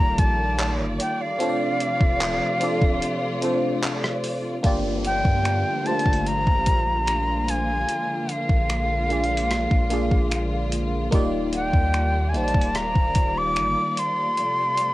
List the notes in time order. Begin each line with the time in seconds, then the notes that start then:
Already playing: D#3 G3 A#3 D#4 F4 G4 A4 A#4 D5 A#5
0.00 D#1
0.18 A#1 A5, kick, closed hi-hat
0.59 clap, closed hi-hat
0.79 G1
1.00 G5, closed hi-hat
1.21 F5
1.39 C3 F3 A3 C4 D4 F4 A4 C#5, closed hi-hat
1.49 D5
1.80 closed hi-hat
2.01 D1, kick
2.21 clap, closed hi-hat
2.60 C4 D4 F4 A4 D5, closed hi-hat
2.82 D1, kick
3.02 closed hi-hat
3.41 C4 D4 F4 A4 C5, closed hi-hat
3.83 clap, closed hi-hat
4.04 cross-stick
4.24 open hi-hat
4.63 G1 D3 F3 G3 A#3 D4 F4 G4 D5, kick, closed hi-hat, downlifter
5.05 G5, closed hi-hat
5.25 G2, kick
5.45 finger snap, closed hi-hat
5.85 A3 D4 F4 G4 C5 A5, closed hi-hat
5.91 A#3
5.99 closed hi-hat
6.06 G1, kick
6.13 closed hi-hat
6.27 A#5, closed hi-hat
6.47 G1, kick
6.66 A#1, kick, closed hi-hat
7.07 finger snap, closed hi-hat
7.48 G#5, closed hi-hat
7.89 F3 G#3, closed hi-hat
8.29 F5, closed hi-hat
8.49 A#1, kick
8.70 finger snap, closed hi-hat
9.09 A#3 D4 F4 G#4 D5, closed hi-hat
9.24 closed hi-hat
9.37 closed hi-hat
9.51 cross-stick, closed hi-hat
9.71 A#1, kick
9.90 A#3 D4 F4 G#4 D5, closed hi-hat
10.11 A#1, kick
10.32 finger snap, closed hi-hat
10.72 closed hi-hat
11.11 D#1 D#3 G3 A#3 D#4 F4 G4 D5, kick, closed hi-hat, swell
11.53 G5, closed hi-hat
11.74 D#2, kick
11.94 finger snap, closed hi-hat
12.29 G#5
12.34 A#1 A#3 D#4 F4 G4 C5 A5, closed hi-hat
12.44 D5
12.48 closed hi-hat
12.54 D#1, kick
12.61 closed hi-hat
12.75 A#5, cross-stick, closed hi-hat
12.95 D#1, kick
13.15 kick, closed hi-hat
13.38 D6
13.56 G1, finger snap, closed hi-hat
13.97 C6, closed hi-hat
14.37 C3 F3 A3, closed hi-hat
14.77 closed hi-hat